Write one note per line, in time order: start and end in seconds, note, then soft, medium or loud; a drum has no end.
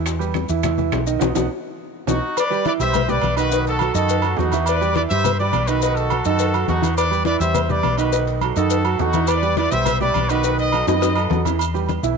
0.00 0.44 E2 medium
0.00 0.15 E3 medium
0.00 0.15 E4 medium
0.00 0.15 E5 medium
0.06 high bongo medium
0.06 high timbale medium
0.06 maracas medium
0.19 0.44 G3 medium
0.19 0.44 G4 medium
0.19 0.44 B4 medium
0.19 high conga soft
0.19 maracas soft
0.34 high bongo medium
0.34 high conga medium
0.34 high timbale medium
0.34 maracas soft
0.49 0.90 E2 loud
0.49 0.61 E3 medium
0.49 0.61 E4 medium
0.49 0.62 E5 medium
0.49 high bongo soft
0.49 high conga soft
0.49 maracas medium
0.63 0.75 E3 medium
0.63 0.75 E4 medium
0.63 0.76 E5 medium
0.63 high bongo medium
0.63 high conga soft
0.63 low conga medium
0.63 high timbale medium
0.63 maracas medium
0.78 1.02 E3 medium
0.78 1.02 E4 medium
0.78 1.02 E5 medium
0.78 high bongo soft
0.78 high conga soft
0.78 low conga medium
0.78 maracas soft
0.92 1.19 B1 medium
0.92 high bongo medium
0.92 low bongo medium
0.92 high conga medium
0.92 high timbale medium
0.92 maracas soft
1.07 1.19 D#3 medium
1.07 1.18 D#4 medium
1.07 1.19 D#5 medium
1.07 high bongo soft
1.07 high conga soft
1.07 maracas medium
1.19 1.32 B1 medium
1.19 1.30 B3 loud
1.19 1.30 D#4 loud
1.19 1.30 F#4 medium
1.19 high bongo loud
1.19 high conga medium
1.19 high timbale loud
1.19 maracas medium
1.35 1.46 B1 medium
1.35 1.45 B3 loud
1.35 1.45 D#4 medium
1.35 1.45 F#4 loud
1.35 high bongo loud
1.35 high conga loud
1.35 high timbale loud
1.35 maracas loud
2.07 2.18 B1 loud
2.07 2.17 B3 medium
2.07 2.17 D#4 medium
2.07 2.35 D#4 medium
2.07 2.17 F#4 medium
2.07 2.35 F#4 medium
2.07 high bongo loud
2.07 high conga loud
2.07 high timbale medium
2.07 maracas medium
2.37 2.65 B4 medium
2.37 2.66 D5 loud
2.37 cowbell loud
2.37 high conga soft
2.37 low agogo loud
2.37 maracas medium
2.50 2.62 G3 medium
2.50 2.63 G4 medium
2.50 2.63 B4 medium
2.50 high conga soft
2.50 maracas soft
2.65 2.77 E3 medium
2.65 2.77 E4 medium
2.65 2.73 B4 medium
2.65 2.73 D5 loud
2.65 2.77 E5 medium
2.65 cowbell medium
2.65 high conga loud
2.65 low agogo medium
2.65 maracas soft
2.80 3.20 B1 medium
2.80 3.03 G3 medium
2.80 3.04 G4 medium
2.80 3.04 B4 medium
2.80 3.07 C5 loud
2.80 3.07 E5 loud
2.80 high conga soft
2.80 maracas medium
2.93 cowbell loud
2.93 high conga soft
2.93 low conga medium
2.93 low agogo loud
2.93 maracas medium
3.08 3.32 G3 medium
3.08 3.32 G4 medium
3.08 3.32 B4 medium
3.08 3.36 B4 medium
3.08 3.38 D5 loud
3.08 high conga soft
3.08 low conga medium
3.08 maracas soft
3.21 3.89 B1 loud
3.21 cowbell medium
3.21 high conga medium
3.21 low agogo loud
3.21 maracas soft
3.36 3.49 D#3 medium
3.36 3.49 D#4 medium
3.36 3.64 F#4 medium
3.36 3.64 B4 loud
3.36 3.49 D#5 loud
3.36 high conga soft
3.36 low agogo medium
3.36 maracas medium
3.51 3.75 D#3 medium
3.51 3.75 D#4 medium
3.51 3.76 D#5 medium
3.51 cowbell loud
3.51 high conga soft
3.51 maracas medium
3.67 3.94 F#4 medium
3.67 3.94 A4 loud
3.67 cowbell medium
3.67 high conga soft
3.67 maracas soft
3.79 3.92 F#3 medium
3.79 3.92 F#4 medium
3.79 3.92 A4 medium
3.79 cowbell medium
3.79 high conga medium
3.79 low agogo loud
3.79 maracas soft
3.95 4.35 F#2 loud
3.95 4.18 D#3 medium
3.95 4.18 D#4 loud
3.95 4.36 F#4 medium
3.95 4.36 A4 loud
3.95 4.19 D#5 loud
3.95 high conga soft
3.95 maracas medium
4.08 cowbell loud
4.08 high conga soft
4.08 low agogo medium
4.08 maracas medium
4.22 4.35 F#3 medium
4.22 4.36 F#4 medium
4.22 4.36 A4 medium
4.22 high conga soft
4.22 low agogo loud
4.22 maracas soft
4.37 5.05 E2 loud
4.37 4.50 F#3 medium
4.37 4.67 D#4 medium
4.37 4.67 F#4 medium
4.37 4.50 F#4 medium
4.37 4.50 A4 medium
4.37 cowbell medium
4.37 high conga medium
4.37 low timbale medium
4.37 maracas soft
4.52 4.76 E3 loud
4.52 4.77 E4 loud
4.52 4.77 E5 medium
4.52 cowbell medium
4.52 high conga medium
4.52 low agogo medium
4.52 maracas medium
4.66 4.95 B4 medium
4.66 4.95 D5 loud
4.66 cowbell loud
4.66 low agogo loud
4.66 maracas medium
4.81 4.93 G3 medium
4.81 4.93 G4 medium
4.81 4.93 B4 medium
4.81 high conga soft
4.81 maracas soft
4.95 5.08 E3 medium
4.95 5.08 E4 medium
4.95 5.02 B4 medium
4.95 5.02 D5 loud
4.95 5.08 E5 medium
4.95 cowbell medium
4.95 high conga loud
4.95 low agogo medium
4.95 maracas soft
5.10 5.51 G2 loud
5.10 5.35 G3 medium
5.10 5.34 G4 medium
5.10 5.35 B4 medium
5.10 5.37 C5 medium
5.10 5.37 E5 loud
5.10 high conga soft
5.10 maracas medium
5.24 cowbell loud
5.24 high conga soft
5.24 low conga medium
5.24 low agogo loud
5.24 maracas loud
5.39 5.63 G3 medium
5.39 5.64 G4 medium
5.39 5.66 B4 medium
5.39 5.64 B4 medium
5.39 5.66 D5 loud
5.39 maracas soft
5.53 6.20 B1 loud
5.53 cowbell medium
5.53 high conga medium
5.53 low agogo loud
5.53 maracas soft
5.68 5.80 D#3 medium
5.68 5.80 D#4 medium
5.68 5.95 F#4 medium
5.68 5.97 B4 medium
5.68 5.80 D#5 medium
5.68 high conga soft
5.68 low agogo loud
5.68 maracas medium
5.82 6.06 D#3 medium
5.82 6.06 D#4 medium
5.82 6.07 D#5 medium
5.82 cowbell loud
5.82 high conga soft
5.82 maracas medium
5.96 6.26 F#4 medium
5.96 6.25 A4 medium
5.96 cowbell medium
5.96 high conga soft
5.96 maracas soft
6.10 6.23 F#3 medium
6.10 6.23 F#4 medium
6.10 6.23 A4 medium
6.10 cowbell medium
6.10 high conga medium
6.10 low agogo loud
6.10 maracas soft
6.25 6.66 F#2 loud
6.25 6.49 D#3 loud
6.25 6.49 D#4 loud
6.25 6.67 F#4 medium
6.25 6.66 A4 medium
6.25 6.50 D#5 medium
6.25 high conga soft
6.25 maracas medium
6.39 cowbell loud
6.39 high conga soft
6.39 low agogo medium
6.39 maracas loud
6.54 6.66 F#3 medium
6.54 6.66 F#4 medium
6.54 6.66 A4 medium
6.54 high conga soft
6.54 low agogo loud
6.54 maracas soft
6.68 7.35 E2 medium
6.68 6.81 F#3 medium
6.68 6.96 D#4 medium
6.68 6.81 F#4 medium
6.68 6.96 F#4 medium
6.68 6.81 A4 medium
6.68 cowbell medium
6.68 high conga medium
6.68 low timbale medium
6.68 maracas soft
6.82 7.06 E3 medium
6.82 7.06 E4 medium
6.82 7.07 E5 medium
6.82 cowbell medium
6.82 high conga medium
6.82 low agogo loud
6.82 maracas medium
6.97 7.25 B4 medium
6.97 7.24 D5 loud
6.97 cowbell loud
6.97 low agogo loud
6.97 maracas medium
7.10 7.23 G3 medium
7.10 7.23 G4 medium
7.10 7.23 B4 medium
7.10 high conga soft
7.10 maracas soft
7.25 7.38 E3 medium
7.25 7.38 E4 medium
7.25 7.40 B4 medium
7.25 7.40 D5 loud
7.25 7.38 E5 medium
7.25 cowbell medium
7.25 high conga loud
7.25 low agogo medium
7.25 maracas soft
7.40 7.81 E2 loud
7.40 7.64 G3 medium
7.40 7.65 G4 medium
7.40 7.65 B4 medium
7.40 7.68 C5 medium
7.40 7.67 E5 loud
7.40 high conga soft
7.40 maracas medium
7.55 cowbell loud
7.55 high conga soft
7.55 low conga medium
7.55 low agogo loud
7.55 maracas medium
7.69 7.93 G3 medium
7.69 7.93 G4 medium
7.69 7.94 B4 medium
7.69 7.98 B4 medium
7.69 7.99 D5 loud
7.69 high conga soft
7.69 low conga medium
7.69 maracas soft
7.83 8.51 B1 loud
7.83 cowbell medium
7.83 high conga medium
7.83 low agogo loud
7.83 maracas soft
7.98 8.10 D#3 medium
7.98 8.10 D#4 medium
7.98 8.26 F#4 medium
7.98 8.26 B4 medium
7.98 8.11 D#5 medium
7.98 high conga soft
7.98 low agogo medium
7.98 maracas medium
8.12 8.37 D#3 medium
8.12 8.37 D#4 medium
8.12 8.37 D#5 medium
8.12 cowbell loud
8.12 high conga soft
8.12 maracas medium
8.27 cowbell medium
8.27 high conga soft
8.27 maracas soft
8.41 8.54 F#3 medium
8.41 8.54 F#4 medium
8.41 8.54 A4 medium
8.41 cowbell medium
8.41 high conga medium
8.41 low agogo loud
8.41 maracas soft
8.56 8.97 F#2 loud
8.56 8.80 D#3 loud
8.56 8.80 D#4 medium
8.56 8.97 F#4 medium
8.56 8.97 A4 loud
8.56 8.80 D#5 medium
8.56 high conga soft
8.56 maracas medium
8.70 cowbell loud
8.70 high conga soft
8.70 low agogo medium
8.70 maracas loud
8.85 8.97 F#3 medium
8.85 8.97 F#4 medium
8.85 8.97 A4 medium
8.85 high conga soft
8.85 low agogo loud
8.85 maracas soft
8.99 9.66 E2 medium
8.99 9.11 F#3 medium
8.99 9.29 D#4 medium
8.99 9.12 F#4 medium
8.99 9.29 F#4 loud
8.99 9.12 A4 medium
8.99 cowbell medium
8.99 high conga medium
8.99 low timbale medium
8.99 maracas soft
9.13 9.38 E3 medium
9.13 9.38 E4 medium
9.13 9.39 E5 medium
9.13 cowbell medium
9.13 high conga medium
9.13 low agogo medium
9.13 maracas medium
9.27 9.55 B4 medium
9.27 9.56 D5 loud
9.27 cowbell loud
9.27 high conga soft
9.27 low agogo loud
9.27 maracas medium
9.42 9.54 G3 medium
9.42 9.55 G4 medium
9.42 9.55 B4 medium
9.42 high conga soft
9.42 maracas soft
9.56 9.70 E3 medium
9.56 9.70 E4 medium
9.56 9.70 B4 medium
9.56 9.71 D5 loud
9.56 9.70 E5 medium
9.56 cowbell medium
9.56 high conga loud
9.56 low agogo medium
9.56 maracas soft
9.70 10.12 B1 medium
9.70 9.96 G3 medium
9.70 9.96 G4 medium
9.70 9.96 B4 medium
9.70 10.00 C5 medium
9.70 10.01 E5 loud
9.70 high conga soft
9.70 maracas medium
9.85 cowbell loud
9.85 high conga soft
9.85 low conga medium
9.85 low agogo loud
9.85 maracas medium
10.00 10.24 G3 medium
10.00 10.25 G4 medium
10.00 10.25 B4 medium
10.00 10.28 B4 medium
10.00 10.28 D5 loud
10.00 high conga soft
10.00 low conga medium
10.00 maracas soft
10.14 10.82 B1 loud
10.14 cowbell medium
10.14 high conga medium
10.14 low agogo loud
10.14 maracas soft
10.29 10.42 D#3 loud
10.29 10.42 D#4 medium
10.29 10.58 F#4 medium
10.29 10.58 B4 loud
10.29 10.42 D#5 medium
10.29 low agogo medium
10.29 maracas medium
10.44 10.68 D#3 medium
10.44 10.68 D#4 medium
10.44 10.68 D#5 medium
10.44 cowbell loud
10.44 high conga soft
10.44 maracas loud
10.58 10.86 B4 medium
10.58 10.86 D#5 loud
10.58 cowbell medium
10.58 high conga soft
10.58 maracas soft
10.72 10.85 F#3 medium
10.72 10.85 F#4 medium
10.72 10.85 A4 medium
10.72 cowbell medium
10.72 high conga medium
10.72 low agogo loud
10.72 maracas soft
10.87 11.28 F#2 loud
10.87 11.11 D#3 medium
10.87 11.11 D#4 medium
10.87 11.42 B4 medium
10.87 11.12 D#5 medium
10.87 11.42 D#5 loud
10.87 high bongo loud
10.87 maracas medium
11.01 cowbell loud
11.01 high bongo loud
11.01 high conga soft
11.01 low agogo medium
11.01 maracas medium
11.15 11.28 F#3 medium
11.15 11.28 F#4 medium
11.15 11.29 A4 medium
11.15 high conga soft
11.15 low agogo loud
11.15 maracas soft
11.30 11.98 E2 loud
11.30 11.42 F#3 medium
11.30 11.42 F#4 medium
11.30 11.43 A4 medium
11.30 cowbell medium
11.30 low bongo medium
11.30 high conga medium
11.30 low timbale medium
11.30 maracas soft
11.45 11.57 E3 medium
11.45 11.57 E4 medium
11.45 11.57 E5 medium
11.45 cowbell medium
11.45 low bongo medium
11.45 high conga medium
11.45 low agogo medium
11.45 maracas medium
11.59 high conga soft
11.59 low agogo loud
11.59 maracas medium
11.74 11.98 G3 medium
11.74 11.98 G4 medium
11.74 11.98 B4 medium
11.74 high conga soft
11.74 maracas soft
11.89 high conga loud
11.89 low agogo medium
11.89 maracas soft
12.03 12.18 B1 medium
12.03 12.15 E3 medium
12.03 12.15 E4 medium
12.03 12.15 E5 medium
12.03 high conga soft
12.03 maracas medium